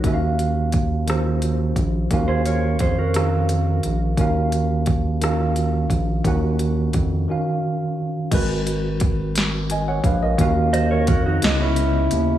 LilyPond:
<<
  \new Staff \with { instrumentName = "Clean electric guitar" } { \time 6/8 \key dis \minor \tempo 4. = 58 <dis' fis'>16 r2 r8. | r16 <gis' bis'>16 <ais' cis''>8 <gis' bis'>16 <fis' ais'>4. r16 | r2. | r2. |
r2. | r8 <bis' dis''>16 <ais' cis''>16 <fis' ais'>16 <dis' fis'>8 <cis' e'>4~ <cis' e'>16 | }
  \new Staff \with { instrumentName = "Tine electric piano" } { \time 6/8 \key dis \minor << { r2. | r2. | r2. | r2. |
r2 <dis'' gis''>16 <cis'' fis''>16 <b' eis''>16 <ais' dis''>16~ | <ais' dis''>16 r2 r8. | } \\ { <dis cis' fis' e'' eis''>4 r8 <dis cis' eis' fis' bis'>4 r8 | <dis cis' fis' eis''>4 r8 <dis cis' fis' eis''>4 r8 | <dis cis' fis' eis''>4 r8 <dis cis' eis' fis' eis''>4 r8 | <dis cis' fis' fis''>4 r8 <dis cis' fis' eis''>4 r8 |
<gis fis' ais' b'>4 r2 | <dis cis' fis' eis''>4 r8 <cis b dis' e' dis''>4 r8 | } >> }
  \new Staff \with { instrumentName = "Analog synth bass" } { \clef bass \time 6/8 \key dis \minor dis,2~ dis,8 ais,,8 | dis,4 eis,4. ais,,8 | dis,2~ dis,8 ais,,8 | dis,4 eis,8 r4. |
gis,,2~ gis,,8 ais,,8 | dis,4 eis,8 cis,4 dis,8 | }
  \new DrumStaff \with { instrumentName = "Drums" } \drummode { \time 6/8 <hh bd>8 hh8 <hh bd>8 <hh ss>8 hh8 <hh bd>8 | <hh bd>8 hh8 <hh bd>8 <hh ss>8 hh8 hh8 | <hh bd>8 hh8 <hh bd>8 <hh ss>8 hh8 <hh bd>8 | <hh bd>8 hh8 <hh bd>8 r4. |
<cymc hh bd>8 hh8 <hh bd>8 <hh sn>8 hh8 <hh bd>8 | <hh bd>8 hh8 <hh bd>8 <hh sn>8 hh8 hh8 | }
>>